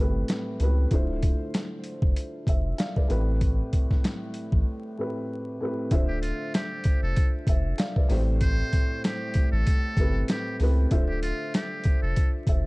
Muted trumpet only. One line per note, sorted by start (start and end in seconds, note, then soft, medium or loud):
6.08 6.21 G4 medium
6.22 6.50 F4 medium
6.55 7.00 G4 medium
7.03 7.31 A4 medium
8.42 9.00 C5 loud
9.05 9.50 G4 medium
9.52 10.25 A4 medium
10.30 10.58 G4 loud
11.09 11.21 G4 medium
11.23 11.51 F4 medium
11.55 12.00 G4 medium
12.02 12.30 A4 medium